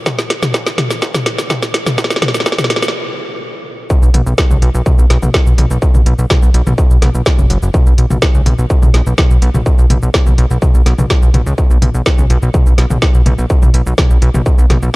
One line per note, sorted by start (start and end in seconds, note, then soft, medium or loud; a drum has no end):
0.06 kick loud
0.06 snare medium
0.06 mid tom medium
0.06 shaker medium
0.19 snare medium
0.19 shaker medium
0.30 snare loud
0.30 closed hi-hat loud
0.43 snare medium
0.43 mid tom loud
0.43 shaker medium
0.54 kick loud
0.54 snare loud
0.54 shaker medium
0.67 snare medium
0.67 shaker medium
0.78 snare medium
0.78 closed hi-hat loud
0.78 mid tom loud
0.91 snare medium
0.91 shaker medium
1.02 kick loud
1.02 snare loud
1.02 shaker medium
1.15 snare medium
1.15 mid tom medium
1.15 shaker medium
1.26 snare loud
1.26 closed hi-hat loud
1.38 snare medium
1.38 shaker medium
1.50 kick loud
1.50 snare medium
1.50 mid tom medium
1.50 shaker medium
1.63 snare medium
1.63 shaker medium
1.74 snare loud
1.74 closed hi-hat loud
1.86 snare medium
1.86 mid tom medium
1.86 shaker medium
1.98 kick loud
1.98 snare loud
1.98 shaker medium
2.04 snare medium
2.10 snare medium
2.10 shaker medium
2.16 snare medium
2.22 snare loud
2.22 closed hi-hat loud
2.22 mid tom medium
2.28 snare medium
2.34 snare medium
2.34 shaker medium
2.40 snare medium
2.46 kick loud
2.46 snare loud
2.46 shaker medium
2.52 snare medium
2.58 snare medium
2.58 mid tom medium
2.58 shaker medium
2.64 snare medium
2.70 snare loud
2.70 closed hi-hat loud
2.76 snare medium
2.82 snare loud
2.82 shaker medium
2.88 snare medium
3.90 kick loud
3.90 shaker medium
4.03 4.10 B1 medium
4.03 shaker medium
4.14 4.22 B1 loud
4.14 closed hi-hat loud
4.14 mid tom medium
4.26 4.34 B1 medium
4.26 shaker medium
4.38 kick loud
4.38 snare loud
4.38 shaker medium
4.51 4.58 C#2 medium
4.51 mid tom medium
4.51 shaker medium
4.62 4.70 B1 loud
4.62 closed hi-hat loud
4.75 4.82 B1 loud
4.75 shaker medium
4.86 kick loud
4.86 mid tom medium
4.86 shaker medium
4.99 5.06 B1 medium
4.99 shaker medium
5.10 5.18 B1 loud
5.10 snare medium
5.10 closed hi-hat loud
5.23 5.30 B1 medium
5.23 mid tom medium
5.23 shaker medium
5.34 kick loud
5.34 snare loud
5.34 shaker medium
5.47 5.54 B1 medium
5.47 shaker medium
5.58 5.66 B1 loud
5.58 closed hi-hat loud
5.58 mid tom medium
5.71 5.78 B1 medium
5.71 shaker medium
5.82 kick loud
5.82 shaker medium
5.95 6.02 B1 medium
5.95 mid tom medium
5.95 shaker medium
6.06 6.14 B1 loud
6.06 closed hi-hat loud
6.18 6.26 B1 medium
6.18 shaker medium
6.30 kick loud
6.30 snare loud
6.30 mid tom medium
6.30 shaker medium
6.43 6.50 B1 medium
6.43 shaker medium
6.54 6.62 B1 loud
6.54 closed hi-hat loud
6.67 6.74 B1 loud
6.67 mid tom medium
6.67 shaker medium
6.78 kick loud
6.78 shaker medium
6.91 6.98 B1 medium
6.91 shaker medium
7.02 7.10 B1 loud
7.02 snare medium
7.02 closed hi-hat loud
7.02 mid tom medium
7.15 7.22 B1 medium
7.15 shaker medium
7.26 kick loud
7.26 snare loud
7.26 shaker medium
7.39 7.46 F#1 medium
7.39 mid tom medium
7.39 shaker medium
7.50 7.58 F#1 loud
7.50 closed hi-hat loud
7.62 7.70 F#1 medium
7.62 shaker medium
7.74 kick loud
7.74 mid tom medium
7.74 shaker medium
7.86 7.94 B1 medium
7.86 shaker medium
7.98 8.06 B1 loud
7.98 closed hi-hat loud
8.10 8.18 B1 medium
8.10 mid tom medium
8.10 shaker medium
8.22 kick loud
8.22 snare loud
8.22 shaker medium
8.35 8.42 C#2 medium
8.35 shaker medium
8.46 8.54 B1 loud
8.46 closed hi-hat loud
8.46 mid tom medium
8.58 8.66 B1 medium
8.58 shaker medium
8.70 kick loud
8.70 shaker medium
8.82 8.90 B1 medium
8.82 mid tom loud
8.82 shaker medium
8.94 9.02 B1 loud
8.94 snare medium
8.94 closed hi-hat loud
9.06 9.14 B1 medium
9.06 shaker medium
9.18 kick loud
9.18 snare loud
9.18 mid tom medium
9.18 shaker medium
9.30 9.38 B1 medium
9.30 shaker medium
9.42 9.50 B1 loud
9.42 closed hi-hat loud
9.54 9.62 B1 medium
9.54 mid tom medium
9.54 shaker medium
9.66 kick loud
9.66 shaker medium
9.79 9.86 B1 medium
9.79 shaker medium
9.90 9.98 B1 loud
9.90 closed hi-hat loud
9.90 mid tom medium
10.02 10.10 B1 medium
10.02 shaker medium
10.14 kick loud
10.14 snare loud
10.14 shaker medium
10.27 10.34 B1 medium
10.27 mid tom medium
10.27 shaker medium
10.38 10.46 B1 loud
10.38 closed hi-hat loud
10.51 10.58 B1 medium
10.51 shaker medium
10.62 kick loud
10.62 mid tom loud
10.62 shaker medium
10.75 10.82 B1 medium
10.75 shaker medium
10.86 10.94 B1 loud
10.86 snare medium
10.86 closed hi-hat loud
10.99 11.06 B1 medium
10.99 mid tom medium
10.99 shaker medium
11.10 kick loud
11.10 snare loud
11.10 shaker medium
11.22 11.30 B1 medium
11.22 shaker medium
11.34 11.42 B1 loud
11.34 closed hi-hat loud
11.34 mid tom loud
11.46 11.54 C#2 medium
11.46 shaker medium
11.58 kick loud
11.58 shaker medium
11.70 11.78 B1 medium
11.70 shaker medium
11.82 11.90 B1 loud
11.82 closed hi-hat loud
11.82 mid tom medium
11.94 12.02 B1 medium
11.94 shaker medium
12.06 kick loud
12.06 snare loud
12.06 shaker medium
12.18 12.26 C#2 medium
12.18 mid tom loud
12.18 shaker medium
12.30 12.38 B1 loud
12.30 closed hi-hat loud
12.42 12.50 B1 loud
12.42 shaker medium
12.54 kick loud
12.54 mid tom loud
12.54 shaker medium
12.66 12.74 B1 medium
12.66 shaker medium
12.78 12.86 B1 loud
12.78 snare medium
12.78 closed hi-hat loud
12.90 12.98 B1 medium
12.90 mid tom loud
12.90 shaker medium
13.02 kick loud
13.02 snare loud
13.02 shaker medium
13.14 13.22 B1 medium
13.14 shaker medium
13.26 13.34 B1 loud
13.26 closed hi-hat loud
13.26 mid tom loud
13.38 13.46 B1 medium
13.38 shaker medium
13.50 kick loud
13.50 shaker medium
13.62 13.70 B1 medium
13.62 mid tom loud
13.62 shaker medium
13.74 13.82 B1 loud
13.74 closed hi-hat loud
13.86 13.94 B1 medium
13.86 shaker medium
13.98 kick loud
13.98 snare loud
13.98 mid tom loud
13.98 shaker medium
14.10 14.18 B1 medium
14.10 shaker medium
14.22 14.30 B1 loud
14.22 closed hi-hat loud
14.34 14.42 B1 loud
14.34 mid tom loud
14.34 shaker medium
14.46 kick loud
14.46 shaker medium
14.58 14.66 B1 medium
14.58 shaker medium
14.70 14.78 B1 loud
14.70 snare medium
14.70 closed hi-hat loud
14.70 mid tom medium
14.82 14.90 B1 medium
14.82 shaker medium